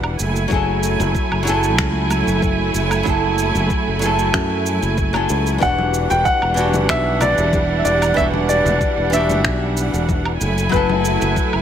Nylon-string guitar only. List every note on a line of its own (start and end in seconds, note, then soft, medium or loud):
0.00 0.16 E3 medium
0.00 0.17 D4 medium
0.00 0.18 F#4 medium
0.00 0.19 G4 loud
0.48 1.42 F#3 medium
0.48 1.43 E4 medium
0.52 1.44 G#4 medium
0.52 1.45 A4 medium
1.43 3.01 F#3 medium
1.43 3.02 E4 medium
1.47 3.03 G#4 medium
1.47 3.04 A4 loud
3.03 3.97 F#3 medium
3.03 3.98 E4 medium
3.07 3.99 G#4 medium
3.07 4.00 A4 medium
3.99 5.10 F#3 medium
3.99 5.11 E4 medium
3.99 5.12 G#4 medium
4.05 5.13 A4 loud
5.13 5.57 F#3 medium
5.13 5.58 E4 medium
5.13 5.58 G#4 medium
5.13 5.59 A4 medium
5.58 6.52 E3 medium
5.58 6.53 D4 medium
5.63 6.54 F#4 medium
5.63 6.55 G4 medium
6.54 8.12 E3 medium
6.54 8.13 D4 medium
6.58 8.14 F#4 medium
6.58 8.15 G4 loud
8.14 9.08 E3 medium
8.14 9.09 D4 medium
8.18 9.10 F#4 medium
8.18 9.11 G4 medium
9.10 10.37 E3 medium
9.10 10.38 D4 medium
9.14 10.39 F#4 medium
9.14 10.40 G4 loud
10.69 11.62 F#3 medium
10.69 11.62 E4 medium
10.74 11.62 G#4 medium
10.74 11.62 A4 medium